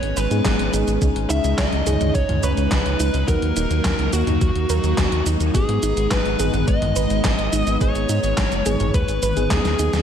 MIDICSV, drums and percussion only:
0, 0, Header, 1, 2, 480
1, 0, Start_track
1, 0, Key_signature, 5, "minor"
1, 0, Tempo, 566038
1, 864, Time_signature, 4, 2, 24, 8
1, 8497, End_track
2, 0, Start_track
2, 0, Title_t, "Drums"
2, 23, Note_on_c, 9, 42, 41
2, 108, Note_off_c, 9, 42, 0
2, 144, Note_on_c, 9, 42, 90
2, 144, Note_on_c, 9, 82, 66
2, 228, Note_off_c, 9, 42, 0
2, 228, Note_off_c, 9, 82, 0
2, 264, Note_on_c, 9, 42, 38
2, 264, Note_on_c, 9, 82, 28
2, 349, Note_off_c, 9, 42, 0
2, 349, Note_off_c, 9, 82, 0
2, 384, Note_on_c, 9, 36, 121
2, 384, Note_on_c, 9, 38, 122
2, 384, Note_on_c, 9, 39, 91
2, 384, Note_on_c, 9, 42, 64
2, 384, Note_on_c, 9, 82, 39
2, 468, Note_off_c, 9, 36, 0
2, 469, Note_off_c, 9, 38, 0
2, 469, Note_off_c, 9, 39, 0
2, 469, Note_off_c, 9, 42, 0
2, 469, Note_off_c, 9, 82, 0
2, 503, Note_on_c, 9, 42, 40
2, 588, Note_off_c, 9, 42, 0
2, 624, Note_on_c, 9, 42, 89
2, 624, Note_on_c, 9, 82, 66
2, 708, Note_off_c, 9, 42, 0
2, 708, Note_off_c, 9, 82, 0
2, 743, Note_on_c, 9, 42, 39
2, 743, Note_on_c, 9, 82, 31
2, 828, Note_off_c, 9, 42, 0
2, 828, Note_off_c, 9, 82, 0
2, 863, Note_on_c, 9, 36, 117
2, 863, Note_on_c, 9, 42, 63
2, 863, Note_on_c, 9, 82, 41
2, 948, Note_off_c, 9, 36, 0
2, 948, Note_off_c, 9, 42, 0
2, 948, Note_off_c, 9, 82, 0
2, 983, Note_on_c, 9, 42, 38
2, 1068, Note_off_c, 9, 42, 0
2, 1104, Note_on_c, 9, 42, 90
2, 1104, Note_on_c, 9, 82, 68
2, 1188, Note_off_c, 9, 42, 0
2, 1188, Note_off_c, 9, 82, 0
2, 1224, Note_on_c, 9, 42, 39
2, 1224, Note_on_c, 9, 82, 31
2, 1309, Note_off_c, 9, 42, 0
2, 1309, Note_off_c, 9, 82, 0
2, 1343, Note_on_c, 9, 36, 124
2, 1344, Note_on_c, 9, 38, 123
2, 1344, Note_on_c, 9, 39, 92
2, 1344, Note_on_c, 9, 42, 64
2, 1344, Note_on_c, 9, 82, 41
2, 1428, Note_off_c, 9, 36, 0
2, 1429, Note_off_c, 9, 38, 0
2, 1429, Note_off_c, 9, 39, 0
2, 1429, Note_off_c, 9, 42, 0
2, 1429, Note_off_c, 9, 82, 0
2, 1463, Note_on_c, 9, 42, 36
2, 1548, Note_off_c, 9, 42, 0
2, 1584, Note_on_c, 9, 42, 92
2, 1584, Note_on_c, 9, 45, 67
2, 1584, Note_on_c, 9, 82, 69
2, 1668, Note_off_c, 9, 42, 0
2, 1668, Note_off_c, 9, 45, 0
2, 1668, Note_off_c, 9, 82, 0
2, 1703, Note_on_c, 9, 42, 37
2, 1703, Note_on_c, 9, 45, 95
2, 1703, Note_on_c, 9, 82, 31
2, 1788, Note_off_c, 9, 42, 0
2, 1788, Note_off_c, 9, 45, 0
2, 1788, Note_off_c, 9, 82, 0
2, 1823, Note_on_c, 9, 36, 127
2, 1823, Note_on_c, 9, 42, 67
2, 1823, Note_on_c, 9, 82, 42
2, 1908, Note_off_c, 9, 36, 0
2, 1908, Note_off_c, 9, 42, 0
2, 1908, Note_off_c, 9, 82, 0
2, 1943, Note_on_c, 9, 42, 40
2, 1943, Note_on_c, 9, 45, 100
2, 2028, Note_off_c, 9, 42, 0
2, 2028, Note_off_c, 9, 45, 0
2, 2063, Note_on_c, 9, 42, 89
2, 2063, Note_on_c, 9, 82, 68
2, 2148, Note_off_c, 9, 42, 0
2, 2148, Note_off_c, 9, 82, 0
2, 2183, Note_on_c, 9, 42, 36
2, 2183, Note_on_c, 9, 82, 30
2, 2268, Note_off_c, 9, 42, 0
2, 2268, Note_off_c, 9, 82, 0
2, 2303, Note_on_c, 9, 36, 120
2, 2303, Note_on_c, 9, 38, 122
2, 2303, Note_on_c, 9, 39, 93
2, 2303, Note_on_c, 9, 42, 64
2, 2303, Note_on_c, 9, 82, 42
2, 2388, Note_off_c, 9, 36, 0
2, 2388, Note_off_c, 9, 38, 0
2, 2388, Note_off_c, 9, 39, 0
2, 2388, Note_off_c, 9, 42, 0
2, 2388, Note_off_c, 9, 82, 0
2, 2423, Note_on_c, 9, 42, 40
2, 2508, Note_off_c, 9, 42, 0
2, 2543, Note_on_c, 9, 42, 87
2, 2543, Note_on_c, 9, 82, 72
2, 2628, Note_off_c, 9, 42, 0
2, 2628, Note_off_c, 9, 82, 0
2, 2663, Note_on_c, 9, 42, 38
2, 2663, Note_on_c, 9, 82, 31
2, 2748, Note_off_c, 9, 42, 0
2, 2748, Note_off_c, 9, 82, 0
2, 2783, Note_on_c, 9, 36, 111
2, 2783, Note_on_c, 9, 42, 62
2, 2783, Note_on_c, 9, 82, 40
2, 2868, Note_off_c, 9, 36, 0
2, 2868, Note_off_c, 9, 42, 0
2, 2868, Note_off_c, 9, 82, 0
2, 2903, Note_on_c, 9, 42, 38
2, 2988, Note_off_c, 9, 42, 0
2, 3023, Note_on_c, 9, 42, 90
2, 3023, Note_on_c, 9, 82, 69
2, 3108, Note_off_c, 9, 42, 0
2, 3108, Note_off_c, 9, 82, 0
2, 3143, Note_on_c, 9, 42, 40
2, 3143, Note_on_c, 9, 82, 33
2, 3228, Note_off_c, 9, 42, 0
2, 3228, Note_off_c, 9, 82, 0
2, 3263, Note_on_c, 9, 36, 120
2, 3263, Note_on_c, 9, 38, 114
2, 3263, Note_on_c, 9, 39, 96
2, 3263, Note_on_c, 9, 42, 63
2, 3263, Note_on_c, 9, 82, 41
2, 3348, Note_off_c, 9, 36, 0
2, 3348, Note_off_c, 9, 38, 0
2, 3348, Note_off_c, 9, 39, 0
2, 3348, Note_off_c, 9, 42, 0
2, 3348, Note_off_c, 9, 82, 0
2, 3383, Note_on_c, 9, 42, 37
2, 3468, Note_off_c, 9, 42, 0
2, 3503, Note_on_c, 9, 42, 90
2, 3503, Note_on_c, 9, 82, 75
2, 3587, Note_off_c, 9, 42, 0
2, 3587, Note_off_c, 9, 82, 0
2, 3623, Note_on_c, 9, 42, 39
2, 3623, Note_on_c, 9, 45, 99
2, 3623, Note_on_c, 9, 82, 31
2, 3708, Note_off_c, 9, 42, 0
2, 3708, Note_off_c, 9, 45, 0
2, 3708, Note_off_c, 9, 82, 0
2, 3743, Note_on_c, 9, 36, 126
2, 3743, Note_on_c, 9, 42, 63
2, 3743, Note_on_c, 9, 82, 40
2, 3828, Note_off_c, 9, 36, 0
2, 3828, Note_off_c, 9, 42, 0
2, 3828, Note_off_c, 9, 82, 0
2, 3863, Note_on_c, 9, 42, 38
2, 3948, Note_off_c, 9, 42, 0
2, 3983, Note_on_c, 9, 42, 87
2, 3983, Note_on_c, 9, 82, 69
2, 4068, Note_off_c, 9, 42, 0
2, 4068, Note_off_c, 9, 82, 0
2, 4103, Note_on_c, 9, 42, 36
2, 4103, Note_on_c, 9, 82, 29
2, 4188, Note_off_c, 9, 42, 0
2, 4188, Note_off_c, 9, 82, 0
2, 4223, Note_on_c, 9, 36, 121
2, 4223, Note_on_c, 9, 38, 119
2, 4223, Note_on_c, 9, 39, 98
2, 4223, Note_on_c, 9, 42, 61
2, 4223, Note_on_c, 9, 82, 41
2, 4308, Note_off_c, 9, 36, 0
2, 4308, Note_off_c, 9, 38, 0
2, 4308, Note_off_c, 9, 39, 0
2, 4308, Note_off_c, 9, 42, 0
2, 4308, Note_off_c, 9, 82, 0
2, 4343, Note_on_c, 9, 42, 41
2, 4428, Note_off_c, 9, 42, 0
2, 4463, Note_on_c, 9, 42, 91
2, 4463, Note_on_c, 9, 82, 71
2, 4548, Note_off_c, 9, 42, 0
2, 4548, Note_off_c, 9, 82, 0
2, 4584, Note_on_c, 9, 42, 38
2, 4584, Note_on_c, 9, 82, 32
2, 4668, Note_off_c, 9, 42, 0
2, 4668, Note_off_c, 9, 82, 0
2, 4703, Note_on_c, 9, 36, 112
2, 4704, Note_on_c, 9, 42, 64
2, 4704, Note_on_c, 9, 82, 42
2, 4788, Note_off_c, 9, 36, 0
2, 4789, Note_off_c, 9, 42, 0
2, 4789, Note_off_c, 9, 82, 0
2, 4823, Note_on_c, 9, 42, 41
2, 4908, Note_off_c, 9, 42, 0
2, 4943, Note_on_c, 9, 42, 91
2, 4943, Note_on_c, 9, 82, 70
2, 5028, Note_off_c, 9, 42, 0
2, 5028, Note_off_c, 9, 82, 0
2, 5063, Note_on_c, 9, 42, 39
2, 5063, Note_on_c, 9, 82, 34
2, 5148, Note_off_c, 9, 42, 0
2, 5148, Note_off_c, 9, 82, 0
2, 5183, Note_on_c, 9, 36, 117
2, 5183, Note_on_c, 9, 38, 114
2, 5183, Note_on_c, 9, 39, 100
2, 5183, Note_on_c, 9, 42, 66
2, 5183, Note_on_c, 9, 82, 43
2, 5268, Note_off_c, 9, 36, 0
2, 5268, Note_off_c, 9, 38, 0
2, 5268, Note_off_c, 9, 39, 0
2, 5268, Note_off_c, 9, 42, 0
2, 5268, Note_off_c, 9, 82, 0
2, 5304, Note_on_c, 9, 42, 39
2, 5388, Note_off_c, 9, 42, 0
2, 5423, Note_on_c, 9, 42, 90
2, 5423, Note_on_c, 9, 45, 65
2, 5423, Note_on_c, 9, 82, 73
2, 5508, Note_off_c, 9, 42, 0
2, 5508, Note_off_c, 9, 45, 0
2, 5508, Note_off_c, 9, 82, 0
2, 5543, Note_on_c, 9, 42, 40
2, 5543, Note_on_c, 9, 45, 96
2, 5543, Note_on_c, 9, 82, 31
2, 5628, Note_off_c, 9, 42, 0
2, 5628, Note_off_c, 9, 45, 0
2, 5628, Note_off_c, 9, 82, 0
2, 5663, Note_on_c, 9, 42, 67
2, 5663, Note_on_c, 9, 82, 41
2, 5664, Note_on_c, 9, 36, 119
2, 5748, Note_off_c, 9, 36, 0
2, 5748, Note_off_c, 9, 42, 0
2, 5748, Note_off_c, 9, 82, 0
2, 5784, Note_on_c, 9, 42, 42
2, 5784, Note_on_c, 9, 45, 94
2, 5868, Note_off_c, 9, 42, 0
2, 5868, Note_off_c, 9, 45, 0
2, 5903, Note_on_c, 9, 42, 90
2, 5903, Note_on_c, 9, 82, 75
2, 5988, Note_off_c, 9, 42, 0
2, 5988, Note_off_c, 9, 82, 0
2, 6023, Note_on_c, 9, 42, 37
2, 6023, Note_on_c, 9, 82, 30
2, 6108, Note_off_c, 9, 42, 0
2, 6108, Note_off_c, 9, 82, 0
2, 6144, Note_on_c, 9, 36, 116
2, 6144, Note_on_c, 9, 38, 117
2, 6144, Note_on_c, 9, 39, 99
2, 6144, Note_on_c, 9, 42, 67
2, 6144, Note_on_c, 9, 82, 43
2, 6228, Note_off_c, 9, 38, 0
2, 6228, Note_off_c, 9, 39, 0
2, 6228, Note_off_c, 9, 42, 0
2, 6228, Note_off_c, 9, 82, 0
2, 6229, Note_off_c, 9, 36, 0
2, 6264, Note_on_c, 9, 42, 40
2, 6349, Note_off_c, 9, 42, 0
2, 6384, Note_on_c, 9, 42, 91
2, 6384, Note_on_c, 9, 82, 73
2, 6469, Note_off_c, 9, 42, 0
2, 6469, Note_off_c, 9, 82, 0
2, 6504, Note_on_c, 9, 42, 39
2, 6504, Note_on_c, 9, 82, 32
2, 6589, Note_off_c, 9, 42, 0
2, 6589, Note_off_c, 9, 82, 0
2, 6624, Note_on_c, 9, 36, 112
2, 6624, Note_on_c, 9, 42, 68
2, 6624, Note_on_c, 9, 82, 42
2, 6709, Note_off_c, 9, 36, 0
2, 6709, Note_off_c, 9, 42, 0
2, 6709, Note_off_c, 9, 82, 0
2, 6744, Note_on_c, 9, 42, 40
2, 6744, Note_on_c, 9, 82, 29
2, 6829, Note_off_c, 9, 42, 0
2, 6829, Note_off_c, 9, 82, 0
2, 6863, Note_on_c, 9, 42, 91
2, 6863, Note_on_c, 9, 82, 72
2, 6948, Note_off_c, 9, 42, 0
2, 6948, Note_off_c, 9, 82, 0
2, 6983, Note_on_c, 9, 42, 41
2, 6983, Note_on_c, 9, 82, 33
2, 7068, Note_off_c, 9, 42, 0
2, 7068, Note_off_c, 9, 82, 0
2, 7104, Note_on_c, 9, 36, 122
2, 7104, Note_on_c, 9, 38, 119
2, 7104, Note_on_c, 9, 39, 100
2, 7104, Note_on_c, 9, 42, 70
2, 7104, Note_on_c, 9, 82, 42
2, 7188, Note_off_c, 9, 38, 0
2, 7188, Note_off_c, 9, 39, 0
2, 7188, Note_off_c, 9, 42, 0
2, 7188, Note_off_c, 9, 82, 0
2, 7189, Note_off_c, 9, 36, 0
2, 7224, Note_on_c, 9, 42, 42
2, 7224, Note_on_c, 9, 82, 29
2, 7308, Note_off_c, 9, 42, 0
2, 7308, Note_off_c, 9, 82, 0
2, 7343, Note_on_c, 9, 42, 98
2, 7343, Note_on_c, 9, 45, 66
2, 7343, Note_on_c, 9, 82, 75
2, 7428, Note_off_c, 9, 42, 0
2, 7428, Note_off_c, 9, 45, 0
2, 7428, Note_off_c, 9, 82, 0
2, 7463, Note_on_c, 9, 42, 39
2, 7463, Note_on_c, 9, 45, 93
2, 7463, Note_on_c, 9, 82, 31
2, 7548, Note_off_c, 9, 42, 0
2, 7548, Note_off_c, 9, 45, 0
2, 7548, Note_off_c, 9, 82, 0
2, 7584, Note_on_c, 9, 36, 126
2, 7584, Note_on_c, 9, 42, 68
2, 7584, Note_on_c, 9, 82, 41
2, 7669, Note_off_c, 9, 36, 0
2, 7669, Note_off_c, 9, 42, 0
2, 7669, Note_off_c, 9, 82, 0
2, 7704, Note_on_c, 9, 42, 40
2, 7704, Note_on_c, 9, 82, 30
2, 7788, Note_off_c, 9, 42, 0
2, 7788, Note_off_c, 9, 82, 0
2, 7824, Note_on_c, 9, 42, 94
2, 7824, Note_on_c, 9, 48, 61
2, 7824, Note_on_c, 9, 82, 70
2, 7909, Note_off_c, 9, 42, 0
2, 7909, Note_off_c, 9, 48, 0
2, 7909, Note_off_c, 9, 82, 0
2, 7944, Note_on_c, 9, 42, 39
2, 7944, Note_on_c, 9, 48, 57
2, 7944, Note_on_c, 9, 82, 30
2, 8029, Note_off_c, 9, 42, 0
2, 8029, Note_off_c, 9, 48, 0
2, 8029, Note_off_c, 9, 82, 0
2, 8064, Note_on_c, 9, 36, 119
2, 8064, Note_on_c, 9, 38, 113
2, 8064, Note_on_c, 9, 39, 105
2, 8064, Note_on_c, 9, 42, 69
2, 8064, Note_on_c, 9, 82, 41
2, 8149, Note_off_c, 9, 36, 0
2, 8149, Note_off_c, 9, 38, 0
2, 8149, Note_off_c, 9, 39, 0
2, 8149, Note_off_c, 9, 42, 0
2, 8149, Note_off_c, 9, 82, 0
2, 8184, Note_on_c, 9, 38, 76
2, 8184, Note_on_c, 9, 42, 42
2, 8184, Note_on_c, 9, 82, 30
2, 8269, Note_off_c, 9, 38, 0
2, 8269, Note_off_c, 9, 42, 0
2, 8269, Note_off_c, 9, 82, 0
2, 8304, Note_on_c, 9, 42, 95
2, 8304, Note_on_c, 9, 82, 74
2, 8389, Note_off_c, 9, 42, 0
2, 8389, Note_off_c, 9, 82, 0
2, 8425, Note_on_c, 9, 38, 88
2, 8425, Note_on_c, 9, 42, 42
2, 8425, Note_on_c, 9, 82, 32
2, 8497, Note_off_c, 9, 38, 0
2, 8497, Note_off_c, 9, 42, 0
2, 8497, Note_off_c, 9, 82, 0
2, 8497, End_track
0, 0, End_of_file